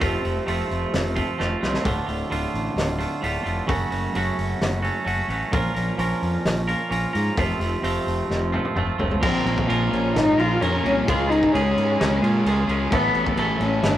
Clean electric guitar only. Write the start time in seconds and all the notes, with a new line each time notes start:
0.00 F2 C3 F3 A3 C4 F4
0.23 F3 A3 C4 F4
0.46 F2 C3 F3 A3 C4 F4
1.16 F3 A3 C4 F4
1.38 F3 A3 C4 F4
1.61 F3 A3 C4 F4
1.84 D2 A2 D3 A3 F4
2.07 D3 A3 F4
2.29 D2 A2 D3 A3 F4
2.99 D3 A3 F4
3.21 A2 D3 A3 F4
3.44 D3 A3 F4
3.67 F#2 C#3 F#3 A3 C#4 F#4
3.91 F#3 A3 C#4 F#4
4.14 F#2 C#3 F#3 A3 C#4 F#4
4.82 F#3 A3 C#4 F#4
5.05 F#3 A3 C#4 F#4
5.29 F#3 A3 C#4 F#4
5.52 A#2 F3 A#3 C#4 F4 A#4
5.74 A#3 C#4 F4 A#4
5.98 A#2 F3 A#3 C#4 F4 A#4
6.68 A#3 C#4 F4 A#4
6.90 A#3 C#4 F4 A#4
7.13 A#3 C#4 F4 A#4
7.37 F2 C3 F3 A3 C4 F4
7.60 F3 A3 C4 F4
7.82 F2 C3 F3 A3 C4 F4
8.52 F3 A3 C4 F4
8.75 F3 A3 C4 F4
8.98 F3 A3 C4 F4
9.21 A#2 F3 A#3 F4 A#4
9.45 A#3 C#4 F4 A#4
9.67 A#2 F3 A#3 C#4 F4 A#4
10.38 A#3 C#4 F4 A#4
10.61 A#3 C#4 F4 A#4
10.84 A#3 C#4 F4 A#4
11.07 C#3 G#3 C#4 F4 G#4
11.30 C#4 F4 G#4
11.53 C#3 G#3 C#4 F4 G#4
12.22 C#4 F4 G#4
12.45 G#3 C#4 F4 G#4
12.68 C#4 F4 G#4
12.91 A2 E3 A3 C#4 E4 A4
13.14 A3 C#4 E4 A4
13.36 A2 E3 A3 C#4 E4 A4